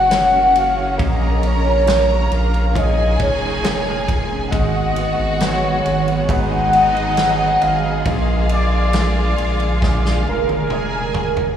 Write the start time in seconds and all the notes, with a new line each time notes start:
Already playing: F#1 C#3 F#3 A#3 C#4 F#4 A#4 C#5 F#5
0.10 C#4 F#4 A#4 C#5, snare, ride
0.33 A#4
0.55 F#4 F5, ride
0.77 C#4
0.98 A#1 A#2 F3 A#3 A#4 A#5, kick, ride
1.03 D#5
1.21 F4
1.43 C#4 C#5, ride
1.66 F4
1.86 A#3 F4 A#4 C#5, snare, ride
2.09 A#4
2.31 A#1 F4, ride
2.35 F5
2.53 C#4, ride
2.75 A#2 D#4 F4 G#4 A#4 C#5 D#5 G#5, kick, ride
2.97 F4
3.19 F1 C#4 C#5, kick, ride
3.43 F4
3.64 A#3 F4 A#4 C#5, snare, ride
3.87 A#4
4.08 F4, kick, ride
4.31 C#4
4.51 G#1 G#2 D#3 G#3 B3 F#4 D#5 F#5, kick, ride
4.75 D#4
4.96 B3, ride
5.19 G#1 D#4
5.40 F#3 F#4 G#4 B4 C#5, snare, ride
5.63 B4
5.85 G#1 D#4, ride
6.07 B3, ride
6.28 G#1 G#2 D#4 F#4 G#4 B4 D#5 F#5, kick, ride
6.53 D#4
6.73 B3, ride
6.96 D#4, ride
7.17 F#3 F#4 G#4 B4, snare, ride
7.40 B4
7.61 G#1 D#4 F5, ride
7.84 B3
8.04 A#1 A#2 D3 G#3 A#3 F4 D#5 F5, kick, ride
8.27 F4
8.49 D4 D5, ride
8.72 F4
8.93 G#3 G#4 A#4 D5, snare, ride
9.17 A#4
9.38 A#1 F4, ride
9.60 D4, ride
9.82 A#2 G#4 A#4 D5, kick, snare
10.06 F4, snare
10.27 F1 D4 A#4
10.49 F4, high tom
10.69 G#3 G#4 A#4 D5 G#5, mid tom
10.93 A#4
11.14 F4, floor tom
11.37 D4, floor tom